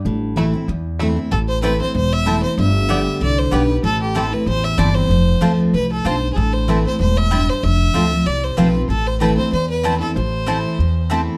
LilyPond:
<<
  \new Staff \with { instrumentName = "Fiddle" } { \time 4/4 \key a \minor \tempo 4 = 190 r1 | a'8 c''8 b'8 c''8 c''8 e''4 c''8 | e''2 d''8 c''8 b'8. r16 | a'8 g'8 a'8 b'8 c''8 e''8 d''8 c''8~ |
c''4. r8 b'8 a'8 c''8. r32 gis'32 | a'8 c''8 b'8 c''8 c''8 e''4 c''8 | e''2 d''8 c''8 b'8. r16 | a'8 c''8 b'8 c''8 c''8 b'4 a'8 |
c''2. r4 | }
  \new Staff \with { instrumentName = "Mandolin" } { \time 4/4 \key a \minor r1 | r4 <c' e' c'' a''>8 r4. <c' e' c'' a''>8 r8 | r4 <b g' d'' g''>8 r4. <b g' d'' g''>8 r8 | r4 <c' e' c'' a''>8 r4. <c' e' c'' a''>8 r8 |
r4 <c' f' c'' a''>8 r4. <c' f' c'' a''>8 r8 | r4 <c' e' c'' a''>8 r4. <c' e' c'' a''>8 r8 | r4 <c' f' c'' a''>8 r4. <c' f' c'' a''>8 r8 | r4 <c' e' c'' a''>8 r4. <c' e' c'' a''>8 r8 |
r4 <c' e' c'' a''>8 r4. <c' e' c'' a''>8 r8 | }
  \new Staff \with { instrumentName = "Five-string banjo" } { \time 4/4 \key a \minor r4 <a e'>8 r4. <a e'>8 r8 | r1 | r1 | r1 |
r1 | r1 | r1 | r1 |
r1 | }
  \new Staff \with { instrumentName = "Steel-string acoustic guitar" } { \time 4/4 \key a \minor << { r4 <e a c' e'>8 <c' e'>8 r4 <e a c' e'>8 <c' e'>8 | r4 <e a c' e'>8 <c' e'>8 r4 <e a c' e'>8 <c' e'>8 | r4 <d g b g'>4 r4 <d g b g'>8 <b g'>8 | r4 <e a c' e'>8 <c' e'>8 r4 <e a c' e'>8 <c' e'>8 |
r4 <f a c' f'>4 r2 | r4 <e a c' e'>8 <c' e'>8 r2 | r4 <f a c' f'>8 <c' f'>8 r4 <f a c' f'>8 <c' f'>8 | r4 <e a c' e'>8 <c' e'>8 r4 <e a c' e'>8 <c' e'>8 |
r4 <e a c' e'>4 r4 <e a c' e'>4 | } \\ { a,2 e,2 | a,2 e,2 | g,2 d2 | a,2 e,2 |
f,2 f,4 g,4 | a,2 a,4 g,4 | f,2 c2 | a,2 e,2 |
a,2 e,2 | } >> }
  \new Staff \with { instrumentName = "Upright bass" } { \clef bass \time 4/4 \key a \minor a,,2 e,2 | a,,2 e,,2 | g,,2 c,4 b,,4 | a,,2 a,,4 g,,4 |
f,,4 d,4 c,4 b,,4 | a,,2 e,,2 | f,,4 d,4 c,4 b,,4 | a,,2 e,2 |
a,,2 e,2 | }
>>